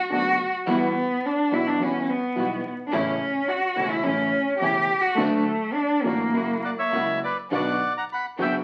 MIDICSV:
0, 0, Header, 1, 6, 480
1, 0, Start_track
1, 0, Tempo, 563380
1, 573, Time_signature, 4, 2, 24, 8
1, 4411, Tempo, 583658
1, 7257, End_track
2, 0, Start_track
2, 0, Title_t, "Bandoneon"
2, 0, Program_c, 0, 23
2, 5617, Note_on_c, 0, 78, 75
2, 5624, Note_on_c, 0, 74, 59
2, 5668, Note_off_c, 0, 78, 0
2, 5673, Note_off_c, 0, 74, 0
2, 5735, Note_on_c, 0, 76, 84
2, 5738, Note_on_c, 0, 73, 66
2, 6068, Note_off_c, 0, 76, 0
2, 6070, Note_off_c, 0, 73, 0
2, 6105, Note_on_c, 0, 74, 77
2, 6115, Note_on_c, 0, 71, 61
2, 6210, Note_off_c, 0, 74, 0
2, 6218, Note_off_c, 0, 71, 0
2, 6344, Note_on_c, 0, 78, 96
2, 6357, Note_on_c, 0, 74, 67
2, 6673, Note_off_c, 0, 78, 0
2, 6680, Note_off_c, 0, 74, 0
2, 6712, Note_on_c, 0, 82, 83
2, 6721, Note_on_c, 0, 78, 67
2, 6761, Note_off_c, 0, 82, 0
2, 6768, Note_off_c, 0, 78, 0
2, 6836, Note_on_c, 0, 83, 89
2, 6848, Note_on_c, 0, 78, 63
2, 6939, Note_off_c, 0, 83, 0
2, 6948, Note_off_c, 0, 78, 0
2, 7072, Note_on_c, 0, 79, 88
2, 7082, Note_on_c, 0, 76, 68
2, 7175, Note_off_c, 0, 79, 0
2, 7183, Note_off_c, 0, 76, 0
2, 7257, End_track
3, 0, Start_track
3, 0, Title_t, "Cello"
3, 0, Program_c, 1, 42
3, 115, Note_on_c, 1, 66, 93
3, 440, Note_off_c, 1, 66, 0
3, 587, Note_on_c, 1, 59, 95
3, 1075, Note_on_c, 1, 62, 82
3, 1088, Note_off_c, 1, 59, 0
3, 1308, Note_on_c, 1, 64, 83
3, 1320, Note_off_c, 1, 62, 0
3, 1426, Note_on_c, 1, 62, 74
3, 1439, Note_off_c, 1, 64, 0
3, 1552, Note_on_c, 1, 61, 73
3, 1565, Note_off_c, 1, 62, 0
3, 1786, Note_on_c, 1, 59, 81
3, 1799, Note_off_c, 1, 61, 0
3, 2261, Note_off_c, 1, 59, 0
3, 2442, Note_on_c, 1, 62, 67
3, 2503, Note_on_c, 1, 61, 88
3, 2516, Note_off_c, 1, 62, 0
3, 2970, Note_on_c, 1, 66, 82
3, 2983, Note_off_c, 1, 61, 0
3, 3320, Note_on_c, 1, 64, 87
3, 3332, Note_off_c, 1, 66, 0
3, 3437, Note_on_c, 1, 61, 89
3, 3449, Note_off_c, 1, 64, 0
3, 3902, Note_off_c, 1, 61, 0
3, 3907, Note_on_c, 1, 67, 96
3, 4268, Note_on_c, 1, 66, 98
3, 4281, Note_off_c, 1, 67, 0
3, 4388, Note_on_c, 1, 57, 93
3, 4401, Note_off_c, 1, 66, 0
3, 4873, Note_on_c, 1, 62, 82
3, 4886, Note_off_c, 1, 57, 0
3, 5115, Note_on_c, 1, 58, 84
3, 5127, Note_off_c, 1, 62, 0
3, 5840, Note_off_c, 1, 58, 0
3, 7257, End_track
4, 0, Start_track
4, 0, Title_t, "String section"
4, 0, Program_c, 2, 48
4, 92, Note_on_c, 2, 57, 46
4, 95, Note_on_c, 2, 59, 43
4, 97, Note_on_c, 2, 62, 55
4, 294, Note_off_c, 2, 57, 0
4, 295, Note_off_c, 2, 59, 0
4, 296, Note_off_c, 2, 62, 0
4, 576, Note_on_c, 2, 55, 73
4, 577, Note_on_c, 2, 64, 69
4, 578, Note_on_c, 2, 66, 81
4, 776, Note_off_c, 2, 55, 0
4, 777, Note_off_c, 2, 64, 0
4, 777, Note_off_c, 2, 66, 0
4, 1296, Note_on_c, 2, 64, 40
4, 1297, Note_on_c, 2, 55, 49
4, 1301, Note_on_c, 2, 66, 53
4, 1497, Note_off_c, 2, 55, 0
4, 1497, Note_off_c, 2, 64, 0
4, 1499, Note_off_c, 2, 66, 0
4, 1538, Note_on_c, 2, 55, 48
4, 1540, Note_on_c, 2, 64, 48
4, 1541, Note_on_c, 2, 66, 56
4, 1738, Note_off_c, 2, 55, 0
4, 1739, Note_off_c, 2, 64, 0
4, 1740, Note_off_c, 2, 66, 0
4, 2016, Note_on_c, 2, 55, 48
4, 2018, Note_on_c, 2, 64, 43
4, 2021, Note_on_c, 2, 66, 57
4, 2218, Note_off_c, 2, 55, 0
4, 2219, Note_off_c, 2, 64, 0
4, 2220, Note_off_c, 2, 66, 0
4, 2490, Note_on_c, 2, 57, 79
4, 2493, Note_on_c, 2, 64, 83
4, 2494, Note_on_c, 2, 61, 70
4, 2693, Note_off_c, 2, 57, 0
4, 2694, Note_off_c, 2, 61, 0
4, 2694, Note_off_c, 2, 64, 0
4, 3205, Note_on_c, 2, 57, 46
4, 3206, Note_on_c, 2, 61, 48
4, 3209, Note_on_c, 2, 64, 55
4, 3408, Note_off_c, 2, 57, 0
4, 3408, Note_off_c, 2, 61, 0
4, 3410, Note_off_c, 2, 64, 0
4, 3451, Note_on_c, 2, 57, 48
4, 3451, Note_on_c, 2, 61, 50
4, 3453, Note_on_c, 2, 64, 60
4, 3651, Note_off_c, 2, 57, 0
4, 3651, Note_off_c, 2, 61, 0
4, 3652, Note_off_c, 2, 64, 0
4, 3929, Note_on_c, 2, 57, 53
4, 3934, Note_on_c, 2, 61, 51
4, 3935, Note_on_c, 2, 64, 60
4, 4131, Note_off_c, 2, 57, 0
4, 4133, Note_off_c, 2, 61, 0
4, 4134, Note_off_c, 2, 64, 0
4, 4410, Note_on_c, 2, 57, 76
4, 4411, Note_on_c, 2, 62, 76
4, 4414, Note_on_c, 2, 66, 85
4, 4608, Note_off_c, 2, 57, 0
4, 4608, Note_off_c, 2, 62, 0
4, 4610, Note_off_c, 2, 66, 0
4, 5125, Note_on_c, 2, 57, 44
4, 5125, Note_on_c, 2, 62, 42
4, 5128, Note_on_c, 2, 66, 49
4, 5324, Note_off_c, 2, 57, 0
4, 5324, Note_off_c, 2, 62, 0
4, 5325, Note_off_c, 2, 66, 0
4, 5365, Note_on_c, 2, 58, 49
4, 5365, Note_on_c, 2, 64, 45
4, 5367, Note_on_c, 2, 66, 53
4, 5564, Note_off_c, 2, 64, 0
4, 5565, Note_off_c, 2, 58, 0
4, 5565, Note_off_c, 2, 66, 0
4, 5843, Note_on_c, 2, 58, 49
4, 5845, Note_on_c, 2, 64, 46
4, 5849, Note_on_c, 2, 66, 51
4, 6048, Note_off_c, 2, 58, 0
4, 6049, Note_off_c, 2, 64, 0
4, 6051, Note_off_c, 2, 66, 0
4, 6329, Note_on_c, 2, 59, 68
4, 6329, Note_on_c, 2, 62, 57
4, 6329, Note_on_c, 2, 66, 67
4, 6531, Note_off_c, 2, 59, 0
4, 6531, Note_off_c, 2, 62, 0
4, 6531, Note_off_c, 2, 66, 0
4, 7051, Note_on_c, 2, 59, 65
4, 7055, Note_on_c, 2, 66, 66
4, 7056, Note_on_c, 2, 62, 62
4, 7253, Note_off_c, 2, 59, 0
4, 7255, Note_off_c, 2, 62, 0
4, 7255, Note_off_c, 2, 66, 0
4, 7257, End_track
5, 0, Start_track
5, 0, Title_t, "Grand piano"
5, 0, Program_c, 3, 0
5, 85, Note_on_c, 3, 50, 41
5, 87, Note_on_c, 3, 30, 49
5, 88, Note_on_c, 3, 42, 49
5, 88, Note_on_c, 3, 57, 39
5, 89, Note_on_c, 3, 59, 39
5, 91, Note_on_c, 3, 66, 51
5, 290, Note_off_c, 3, 50, 0
5, 292, Note_off_c, 3, 30, 0
5, 292, Note_off_c, 3, 42, 0
5, 292, Note_off_c, 3, 57, 0
5, 292, Note_off_c, 3, 59, 0
5, 293, Note_off_c, 3, 66, 0
5, 570, Note_on_c, 3, 52, 79
5, 571, Note_on_c, 3, 55, 64
5, 571, Note_on_c, 3, 66, 75
5, 572, Note_on_c, 3, 40, 80
5, 572, Note_on_c, 3, 59, 64
5, 773, Note_off_c, 3, 52, 0
5, 774, Note_off_c, 3, 40, 0
5, 774, Note_off_c, 3, 55, 0
5, 774, Note_off_c, 3, 59, 0
5, 774, Note_off_c, 3, 66, 0
5, 1290, Note_on_c, 3, 52, 43
5, 1291, Note_on_c, 3, 35, 56
5, 1291, Note_on_c, 3, 47, 51
5, 1291, Note_on_c, 3, 55, 41
5, 1292, Note_on_c, 3, 59, 41
5, 1294, Note_on_c, 3, 66, 53
5, 1494, Note_off_c, 3, 35, 0
5, 1494, Note_off_c, 3, 47, 0
5, 1494, Note_off_c, 3, 52, 0
5, 1494, Note_off_c, 3, 55, 0
5, 1495, Note_off_c, 3, 59, 0
5, 1495, Note_off_c, 3, 66, 0
5, 1526, Note_on_c, 3, 52, 54
5, 1526, Note_on_c, 3, 59, 43
5, 1528, Note_on_c, 3, 40, 54
5, 1528, Note_on_c, 3, 55, 42
5, 1528, Note_on_c, 3, 66, 54
5, 1732, Note_off_c, 3, 59, 0
5, 1733, Note_off_c, 3, 40, 0
5, 1733, Note_off_c, 3, 52, 0
5, 1733, Note_off_c, 3, 55, 0
5, 1733, Note_off_c, 3, 66, 0
5, 2006, Note_on_c, 3, 35, 51
5, 2006, Note_on_c, 3, 52, 44
5, 2007, Note_on_c, 3, 55, 43
5, 2007, Note_on_c, 3, 59, 42
5, 2007, Note_on_c, 3, 66, 50
5, 2008, Note_on_c, 3, 47, 49
5, 2212, Note_off_c, 3, 35, 0
5, 2213, Note_off_c, 3, 52, 0
5, 2213, Note_off_c, 3, 55, 0
5, 2213, Note_off_c, 3, 59, 0
5, 2213, Note_off_c, 3, 66, 0
5, 2214, Note_off_c, 3, 47, 0
5, 2492, Note_on_c, 3, 52, 71
5, 2494, Note_on_c, 3, 33, 81
5, 2494, Note_on_c, 3, 57, 64
5, 2495, Note_on_c, 3, 45, 85
5, 2495, Note_on_c, 3, 49, 73
5, 2496, Note_on_c, 3, 64, 83
5, 2694, Note_off_c, 3, 52, 0
5, 2695, Note_off_c, 3, 33, 0
5, 2695, Note_off_c, 3, 45, 0
5, 2695, Note_off_c, 3, 49, 0
5, 2695, Note_off_c, 3, 57, 0
5, 2695, Note_off_c, 3, 64, 0
5, 3204, Note_on_c, 3, 28, 54
5, 3204, Note_on_c, 3, 52, 44
5, 3205, Note_on_c, 3, 49, 48
5, 3206, Note_on_c, 3, 40, 55
5, 3207, Note_on_c, 3, 57, 44
5, 3208, Note_on_c, 3, 64, 50
5, 3407, Note_off_c, 3, 28, 0
5, 3407, Note_off_c, 3, 52, 0
5, 3408, Note_off_c, 3, 40, 0
5, 3408, Note_off_c, 3, 49, 0
5, 3409, Note_off_c, 3, 57, 0
5, 3409, Note_off_c, 3, 64, 0
5, 3447, Note_on_c, 3, 49, 47
5, 3448, Note_on_c, 3, 45, 58
5, 3449, Note_on_c, 3, 52, 45
5, 3449, Note_on_c, 3, 57, 43
5, 3453, Note_on_c, 3, 33, 60
5, 3453, Note_on_c, 3, 64, 59
5, 3649, Note_off_c, 3, 49, 0
5, 3650, Note_off_c, 3, 45, 0
5, 3650, Note_off_c, 3, 52, 0
5, 3650, Note_off_c, 3, 57, 0
5, 3652, Note_off_c, 3, 33, 0
5, 3653, Note_off_c, 3, 64, 0
5, 3926, Note_on_c, 3, 49, 48
5, 3926, Note_on_c, 3, 57, 41
5, 3929, Note_on_c, 3, 28, 56
5, 3929, Note_on_c, 3, 52, 45
5, 3930, Note_on_c, 3, 40, 55
5, 3931, Note_on_c, 3, 64, 50
5, 4130, Note_off_c, 3, 49, 0
5, 4130, Note_off_c, 3, 57, 0
5, 4131, Note_off_c, 3, 28, 0
5, 4131, Note_off_c, 3, 40, 0
5, 4131, Note_off_c, 3, 52, 0
5, 4132, Note_off_c, 3, 64, 0
5, 4409, Note_on_c, 3, 50, 87
5, 4411, Note_on_c, 3, 54, 66
5, 4412, Note_on_c, 3, 38, 89
5, 4415, Note_on_c, 3, 57, 69
5, 4418, Note_on_c, 3, 66, 78
5, 4609, Note_off_c, 3, 38, 0
5, 4609, Note_off_c, 3, 54, 0
5, 4611, Note_off_c, 3, 50, 0
5, 4611, Note_off_c, 3, 57, 0
5, 4612, Note_off_c, 3, 66, 0
5, 5120, Note_on_c, 3, 50, 50
5, 5122, Note_on_c, 3, 45, 52
5, 5122, Note_on_c, 3, 54, 38
5, 5123, Note_on_c, 3, 33, 57
5, 5123, Note_on_c, 3, 57, 40
5, 5126, Note_on_c, 3, 66, 47
5, 5321, Note_off_c, 3, 50, 0
5, 5322, Note_off_c, 3, 33, 0
5, 5322, Note_off_c, 3, 45, 0
5, 5322, Note_off_c, 3, 54, 0
5, 5323, Note_off_c, 3, 57, 0
5, 5324, Note_off_c, 3, 66, 0
5, 5357, Note_on_c, 3, 49, 44
5, 5360, Note_on_c, 3, 58, 44
5, 5362, Note_on_c, 3, 42, 55
5, 5364, Note_on_c, 3, 54, 54
5, 5368, Note_on_c, 3, 64, 51
5, 5561, Note_off_c, 3, 49, 0
5, 5562, Note_off_c, 3, 58, 0
5, 5563, Note_off_c, 3, 42, 0
5, 5564, Note_off_c, 3, 54, 0
5, 5566, Note_off_c, 3, 64, 0
5, 5846, Note_on_c, 3, 49, 52
5, 5846, Note_on_c, 3, 54, 40
5, 5848, Note_on_c, 3, 37, 52
5, 5849, Note_on_c, 3, 58, 38
5, 5851, Note_on_c, 3, 64, 50
5, 6049, Note_off_c, 3, 49, 0
5, 6049, Note_off_c, 3, 54, 0
5, 6051, Note_off_c, 3, 37, 0
5, 6051, Note_off_c, 3, 58, 0
5, 6052, Note_off_c, 3, 64, 0
5, 6334, Note_on_c, 3, 50, 65
5, 6336, Note_on_c, 3, 35, 75
5, 6336, Note_on_c, 3, 54, 59
5, 6337, Note_on_c, 3, 47, 70
5, 6337, Note_on_c, 3, 59, 60
5, 6339, Note_on_c, 3, 66, 75
5, 6533, Note_off_c, 3, 50, 0
5, 6534, Note_off_c, 3, 54, 0
5, 6535, Note_off_c, 3, 35, 0
5, 6535, Note_off_c, 3, 47, 0
5, 6535, Note_off_c, 3, 59, 0
5, 6536, Note_off_c, 3, 66, 0
5, 7049, Note_on_c, 3, 54, 57
5, 7051, Note_on_c, 3, 50, 61
5, 7052, Note_on_c, 3, 30, 75
5, 7052, Note_on_c, 3, 42, 70
5, 7054, Note_on_c, 3, 59, 58
5, 7054, Note_on_c, 3, 66, 66
5, 7252, Note_off_c, 3, 54, 0
5, 7253, Note_off_c, 3, 42, 0
5, 7253, Note_off_c, 3, 50, 0
5, 7254, Note_off_c, 3, 30, 0
5, 7254, Note_off_c, 3, 59, 0
5, 7255, Note_off_c, 3, 66, 0
5, 7257, End_track
6, 0, Start_track
6, 0, Title_t, "Upright bass"
6, 0, Program_c, 4, 32
6, 97, Note_on_c, 4, 30, 57
6, 296, Note_off_c, 4, 30, 0
6, 575, Note_on_c, 4, 40, 88
6, 775, Note_off_c, 4, 40, 0
6, 1291, Note_on_c, 4, 35, 58
6, 1494, Note_off_c, 4, 35, 0
6, 1530, Note_on_c, 4, 40, 59
6, 1734, Note_off_c, 4, 40, 0
6, 2015, Note_on_c, 4, 35, 63
6, 2217, Note_off_c, 4, 35, 0
6, 2496, Note_on_c, 4, 33, 87
6, 2695, Note_off_c, 4, 33, 0
6, 3209, Note_on_c, 4, 28, 58
6, 3410, Note_off_c, 4, 28, 0
6, 3444, Note_on_c, 4, 33, 60
6, 3648, Note_off_c, 4, 33, 0
6, 3928, Note_on_c, 4, 28, 65
6, 4130, Note_off_c, 4, 28, 0
6, 4403, Note_on_c, 4, 38, 87
6, 4605, Note_off_c, 4, 38, 0
6, 5119, Note_on_c, 4, 33, 55
6, 5320, Note_off_c, 4, 33, 0
6, 5355, Note_on_c, 4, 30, 62
6, 5559, Note_off_c, 4, 30, 0
6, 5847, Note_on_c, 4, 37, 57
6, 6050, Note_off_c, 4, 37, 0
6, 6329, Note_on_c, 4, 35, 81
6, 6531, Note_off_c, 4, 35, 0
6, 7052, Note_on_c, 4, 30, 77
6, 7253, Note_off_c, 4, 30, 0
6, 7257, End_track
0, 0, End_of_file